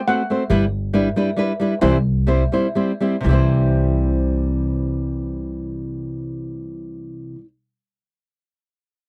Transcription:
0.07 A3 C4 F#4 C5 F#5
0.30 A3 C4 F#4 C5
0.50 G1 G3 D4 E4 B4
0.93 G3 D4 E4 B4
1.16 G3 D4 E4 B4
1.36 G3 D4 E4 B4
1.60 G3 D4 E4 B4
1.81 C2 C3 E3 G3 C4 E4 C5
2.27 G3 C4 E4 C5
2.52 G3 C4 E4 C5
2.75 G3 C4 E4 C5
3.00 G3 C4 E4 C5
3.21 C2 C3 E3
3.26 G3 C4
3.31 E4 C5

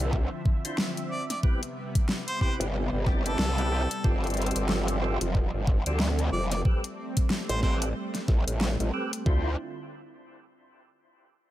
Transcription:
Already playing: D3 F3 C4 E5
0.00 C2, closed hi-hat
0.13 kick
0.46 kick
0.65 D4 E4 F4 C5, closed hi-hat
0.78 snare
0.97 closed hi-hat
1.11 D5
1.30 D5, snare, closed hi-hat
1.43 C3 G3 B3 C4 E4 G4 B4, kick
1.63 closed hi-hat
1.95 kick, closed hi-hat
2.09 snare
2.28 C5, closed hi-hat
2.41 C4 E4 G4 B4 C5, kick
2.60 G1, closed hi-hat
2.93 G1
3.06 C4 E4 G4 D5, kick, snare
3.26 C4 E4 G4 A4 D5, closed hi-hat
3.39 C2, snare
3.58 C4 E4 G4 B4, closed hi-hat
3.72 C4 E4 G4 C5
3.91 closed hi-hat
4.04 G1 F3 C4 F4 G4 A4, kick
4.24 closed hi-hat
4.27 closed hi-hat
4.30 closed hi-hat
4.34 closed hi-hat
4.37 closed hi-hat
4.42 closed hi-hat
4.46 closed hi-hat
4.51 closed hi-hat
4.56 G1, closed hi-hat
4.69 snare
4.88 closed hi-hat
5.02 C4 F4 G4 A4
5.21 F1, closed hi-hat
5.35 kick
5.54 G1
5.67 kick
5.86 D2 C4 F4 G4 A4, closed hi-hat
6.00 snare
6.19 closed hi-hat
6.32 F1 D5
6.52 D5, snare, closed hi-hat
6.64 G3 A3 C4 G4 A4 B4, kick
6.84 closed hi-hat
7.17 kick, closed hi-hat
7.30 snare
7.49 A1 C5, closed hi-hat
7.62 C4 G4 A4 B4 C5, kick, snare
7.82 closed hi-hat
8.15 snare, closed hi-hat
8.28 A1, kick, snare
8.47 A1, closed hi-hat
8.61 snare
8.80 A1, closed hi-hat
8.94 C4 G4 A4 B4
9.13 closed hi-hat
9.26 D2 D3 C4 D4 E4 F4 C5, kick

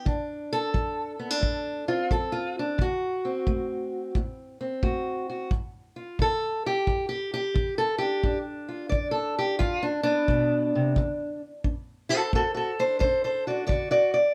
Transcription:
0.05 D3 D4, kick
0.53 A4
0.74 F#3, kick
1.19 B3
1.30 D4
1.40 A2, kick
1.88 C4 F4
2.11 F#3 A4, kick
2.32 F4
2.59 D4
2.78 D3 F#4, kick
3.25 C4
3.47 A3, kick
4.15 A2, kick
4.61 C4
4.83 A3 F#4, kick
5.30 F#4
5.51 G2, kick
5.96 F4
6.19 D3 A4, kick
6.66 G4
6.87 G2, kick
7.09 G4
7.34 G4
7.54 D3, kick
7.78 A4
7.98 D4 G4
8.23 G2 D4, kick
8.69 F4
8.89 D3 D5, kick
9.11 A4
9.39 G4
9.59 G2 F4, kick
9.83 D4
10.03 B3 D4
10.28 B2, kick
10.75 C3
10.96 D3, kick
11.64 D4, kick
12.09 F#4 A4 C5
12.33 A2 F#4 A4, kick
12.54 F#4 A4
12.79 D4 A4 C5
12.99 A4 C5, kick
13.04 D4
13.24 A4 C5
13.47 D4 F#4 D5
13.67 F#4 D5, kick
13.71 D3
13.91 F#4 D5
14.14 D5

